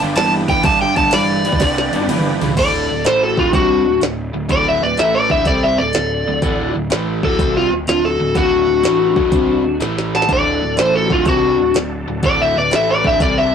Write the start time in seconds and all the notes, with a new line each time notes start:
Already playing: D4 G4 B4
0.00 G1 G2 D3, ride
0.16 G1 G2 E3 A5, snare, ride
0.48 G1 G2 E3 G5, kick, ride
0.63 G1 G2 D3 A5, kick, ride
0.81 G5, snare
0.96 G1 G2 D3 A5, kick, ride
1.11 G1 G2 E3 D5, snare, ride
1.45 G2 E3, ride
1.52 kick
1.60 C2 G2 D3, kick, snare, ride
1.78 snare
1.92 G1 G2 D3, ride
2.01 high tom
2.08 G1 G2 E3, mid tom, ride
2.41 C#2 G2 E3, floor tom, ride
2.49 floor tom
2.57 D1 D2 A2 D3 A4 D5, kick, open hi-hat, crash
2.90 D1 D2 A2
3.04 A1 A2 E3 A3 A4 C5, snare, open hi-hat
3.22 F#4 A4
3.37 D1 D2 A2 D3 C4 F4, kick
3.53 C2 C3 G3 C4 D4 F#4, kick, open hi-hat
3.86 D1 D2 A2
4.01 D1 D2 A2, snare, open hi-hat
4.34 D1 D2 A2
4.49 D1 D2 A2 D3 A4 D5, kick, open hi-hat
4.68 C5 E5
4.82 D1 D2 A2 B4 D5
4.97 A1 A2 E3 A3 A4 E5, snare, open hi-hat
5.15 B4 D5
5.30 D1 D2 A2 D3 C5 E5, kick
5.45 C2 C3 G3 C4 A4 D5, kick, open hi-hat
5.63 C5 E5
5.78 D1 D2 A2 A4 D5
5.93 D1 D2 A2, snare, open hi-hat
6.27 D1 D2 A2
6.42 D1 D2 A2 D3, kick, open hi-hat
6.75 D1 D2 A2
6.90 A1 A2 E3 A3, snare, open hi-hat
7.23 D1 D2 A2 D3 F#4 A4, kick
7.39 C2 C3 G3 C4, kick, open hi-hat
7.57 C4 F4
7.71 D1 D2 A2
7.87 D1 D2 A2 D4 F4, snare, open hi-hat
8.05 F#4 A4
8.20 D1 D2 A2
8.35 D1 D2 A2 D3 D4 F#4, kick, open hi-hat
8.68 D1 D2 A2
8.83 A1 A2 E3 A3, snare, open hi-hat
9.16 D1 D2 A2 D3, kick
9.32 C2 C3 G3 C4, kick, open hi-hat
9.64 D1 D2 A2
9.80 A1 A2 E3 A3, snare, open hi-hat
9.98 snare
10.15 F#5 A5, snare
10.22 snare
10.28 D1 D2 A2 D3 D4 F#4 A4, kick, open hi-hat
10.33 A4 D5
10.62 D1 D2 A2
10.77 A1 A2 E3 A3 A4 C5, snare, open hi-hat
10.95 F#4 A4
11.10 D1 D2 A2 D3 C4 F4, kick
11.25 C2 C3 G3 C4 D4 F#4, kick, open hi-hat
11.59 D1 D2 A2
11.74 D1 D2 A2, snare, open hi-hat
12.08 D1 D2 A2
12.23 D1 D2 A2 D3 A4 D5, kick, open hi-hat
12.42 C5 E5
12.56 D1 D2 A2 B4 D5
12.71 A1 A2 E3 A3 A4 E5, snare, open hi-hat
12.90 B4 D5
13.04 D1 D2 A2 D3 C5 E5, kick
13.20 C2 C3 G3 C4 A4 D5, kick, open hi-hat
13.38 C5 E5